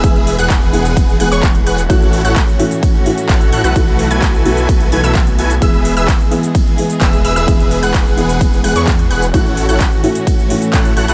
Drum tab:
RD |x---x---x---x---|x---x---x---x---|x---x---x---x---|x---x---x---x---|
HH |x-oxx-oxx-oxxxox|x-oxx-oxx-oxxxox|x-oxx-oxxxoxxxox|x-oxx-oxx-oxxxox|
SH |xx-xxx-xxx-xxx-x|xx-xxx-xxx-xxx-x|xx-xxx-xxx-xxx-x|xx-xxx-xxx-xxx-x|
CP |----x-------x---|----x-------x---|----x-------x---|----x-------x---|
BD |o---o---o---o---|o---o---o---o---|o---o---o---o---|o---o---o---o---|

RD |x---x---x---x---|x---x---x---x---|
HH |x-oxx-oxx-oxxxox|x-oxx-oxx-oxxxox|
SH |xx-xxx-xxx-xxx-x|xx-xxx-xxx-xxx-x|
CP |----x-------x---|----x-------x---|
BD |o---o---o---o---|o---o---o---o---|